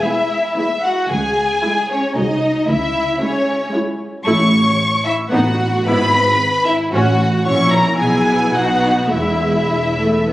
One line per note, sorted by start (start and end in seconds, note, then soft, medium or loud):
0.03 0.43 G#3 soft
0.03 0.43 B3 soft
0.03 0.55 E4 soft
0.03 0.55 E5 medium
0.56 0.97 G#3 soft
0.56 0.97 B3 soft
0.56 0.64 E4 soft
0.56 0.83 E5 medium
0.84 1.10 F#4 soft
0.84 1.11 F#5 medium
1.10 1.53 C#2 soft
1.10 1.90 G#4 soft
1.10 1.89 G#5 medium
1.64 2.03 G#3 soft
1.64 2.03 E4 soft
1.91 2.17 C#4 soft
1.91 2.16 C#5 medium
2.16 2.58 C2 medium
2.16 2.55 G#3 soft
2.16 2.68 D#4 medium
2.16 2.55 F#4 soft
2.16 2.68 D#5 medium
2.68 3.10 C#2 medium
2.68 3.20 E4 soft
2.68 3.21 E5 medium
3.21 3.60 G#3 medium
3.21 3.72 C#4 soft
3.21 3.60 E4 medium
3.21 3.73 C#5 medium
3.74 4.12 G#3 soft
3.74 4.12 E4 soft
4.26 4.70 A1 medium
4.26 4.70 A2 medium
4.26 4.50 A3 soft
4.26 4.50 E4 medium
4.26 5.01 C#5 medium
4.26 5.01 C#6 medium
5.05 5.13 E4 soft
5.05 5.13 E5 medium
5.31 5.77 A1 medium
5.31 5.77 A2 medium
5.31 5.57 B3 medium
5.31 5.57 D#4 medium
5.31 5.86 F#4 medium
5.31 5.85 F#5 medium
5.86 6.31 G#1 medium
5.86 6.31 G#2 medium
5.86 6.12 B3 medium
5.86 6.12 E4 medium
5.86 6.66 B4 medium
5.86 6.65 B5 medium
6.66 6.93 E4 medium
6.66 6.74 E5 medium
6.93 7.37 A1 medium
6.93 7.37 A2 medium
6.93 7.18 C#4 medium
6.93 7.45 F#4 medium
6.93 7.18 F#4 medium
6.93 7.45 F#5 medium
7.45 7.96 A#1 medium
7.45 7.96 A#2 medium
7.45 7.96 C#4 medium
7.45 7.96 E4 medium
7.45 7.53 C#5 medium
7.45 7.72 C#6 medium
7.72 7.99 A#4 medium
7.72 7.99 A#5 medium
7.99 8.53 B1 medium
7.99 8.53 B2 medium
7.99 8.53 B3 medium
7.99 8.53 E4 medium
7.99 8.54 G#4 medium
7.99 8.54 G#5 medium
8.54 9.11 B1 medium
8.54 9.11 B2 medium
8.54 9.11 B3 medium
8.54 9.12 D#4 soft
8.54 9.11 F#4 medium
8.54 9.12 F#5 medium
9.12 10.33 E1 medium
9.12 10.33 E2 soft
9.12 9.64 G#3 soft
9.12 9.63 E4 soft
9.12 10.33 E4 medium
9.12 10.33 E5 medium
9.69 9.77 G#3 soft
9.99 10.27 A3 medium
10.27 10.33 B3 medium